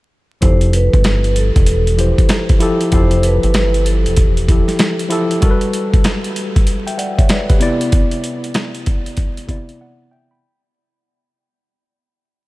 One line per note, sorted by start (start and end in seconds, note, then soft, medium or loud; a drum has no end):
0.41 0.88 F1 loud
0.41 1.25 F3 medium
0.41 1.26 E4 medium
0.41 1.26 G4 medium
0.41 1.27 A4 medium
0.41 0.70 C5 loud
0.41 kick loud
0.41 closed hi-hat medium
0.61 closed hi-hat medium
0.73 1.32 B4 medium
0.73 closed hi-hat medium
0.93 1.49 G1 medium
0.93 kick medium
0.93 closed hi-hat soft
1.04 snare loud
1.04 snare medium
1.04 closed hi-hat medium
1.24 closed hi-hat soft
1.36 2.89 A4 medium
1.36 closed hi-hat medium
1.56 2.12 E1 medium
1.56 kick loud
1.56 closed hi-hat medium
1.66 closed hi-hat loud
1.87 closed hi-hat soft
1.97 2.40 F3 medium
1.97 2.41 E4 medium
1.97 2.41 G4 medium
1.97 2.42 C5 medium
1.97 closed hi-hat medium
2.18 kick medium
2.18 closed hi-hat medium
2.29 snare loud
2.29 snare medium
2.29 closed hi-hat medium
2.49 kick medium
2.49 closed hi-hat soft
2.59 2.83 F3 medium
2.59 2.83 E4 medium
2.59 2.84 G4 medium
2.59 2.85 A4 loud
2.59 closed hi-hat medium
2.81 closed hi-hat medium
2.91 3.38 F1 loud
2.91 3.75 F3 medium
2.91 3.76 E4 medium
2.91 3.76 G4 medium
2.91 3.77 A4 medium
2.91 3.21 C5 loud
2.91 kick loud
2.91 closed hi-hat medium
3.11 closed hi-hat medium
3.23 3.83 B4 medium
3.23 closed hi-hat medium
3.43 4.06 G1 medium
3.43 closed hi-hat soft
3.54 snare loud
3.54 snare medium
3.54 closed hi-hat medium
3.74 closed hi-hat soft
3.85 4.95 A4 medium
3.85 closed hi-hat medium
4.06 4.62 E1 medium
4.06 closed hi-hat medium
4.17 kick loud
4.17 closed hi-hat medium
4.37 closed hi-hat medium
4.48 4.91 F3 medium
4.48 4.91 E4 medium
4.48 4.92 G4 medium
4.48 4.92 A4 medium
4.48 kick medium
4.48 closed hi-hat medium
4.68 snare soft
4.68 closed hi-hat medium
4.79 snare loud
4.79 snare medium
4.79 closed hi-hat medium
4.99 closed hi-hat soft
5.09 5.33 F3 medium
5.09 5.33 E4 medium
5.09 5.34 G4 medium
5.09 5.35 A4 loud
5.09 closed hi-hat medium
5.31 closed hi-hat medium
5.41 6.25 G3 medium
5.41 6.26 F#4 medium
5.41 6.26 A4 medium
5.41 5.52 A#4 medium
5.41 kick loud
5.41 closed hi-hat medium
5.51 6.30 B4 loud
5.61 closed hi-hat medium
5.73 closed hi-hat medium
5.94 kick medium
5.94 closed hi-hat soft
6.04 snare loud
6.04 snare medium
6.04 closed hi-hat medium
6.24 closed hi-hat soft
6.36 closed hi-hat medium
6.56 kick loud
6.56 closed hi-hat medium
6.67 closed hi-hat medium
6.87 6.98 E5 medium
6.87 6.98 G5 medium
6.87 closed hi-hat medium
6.98 7.17 D5 medium
6.98 7.17 F#5 medium
6.98 closed hi-hat medium
7.18 7.29 C#5 medium
7.18 7.29 E5 medium
7.18 kick medium
7.18 closed hi-hat medium
7.29 7.48 B4 medium
7.29 7.49 D5 medium
7.29 snare loud
7.29 snare medium
7.29 closed hi-hat medium
7.49 7.79 G4 medium
7.49 7.79 B4 medium
7.49 kick loud
7.49 closed hi-hat soft
7.59 8.62 C3 medium
7.59 8.62 B3 medium
7.59 8.63 E4 medium
7.59 8.64 D5 loud
7.59 closed hi-hat medium
7.81 closed hi-hat medium
7.92 kick loud
7.92 closed hi-hat medium
8.11 closed hi-hat medium
8.24 closed hi-hat medium
8.44 closed hi-hat soft
8.54 snare loud
8.54 snare medium
8.54 closed hi-hat medium
8.75 closed hi-hat soft
8.86 kick loud
8.86 closed hi-hat medium
9.06 closed hi-hat medium
9.17 kick loud
9.17 closed hi-hat medium
9.37 closed hi-hat medium
9.47 9.90 C3 medium
9.47 9.91 B3 medium
9.47 9.91 E4 medium
9.47 9.81 D5 medium
9.47 kick medium
9.47 closed hi-hat medium
9.69 closed hi-hat medium
9.81 10.11 D5 medium
9.81 10.10 F#5 medium
10.11 10.30 E5 medium
10.11 10.30 G5 medium
10.31 10.61 G5 medium
10.31 10.61 B5 medium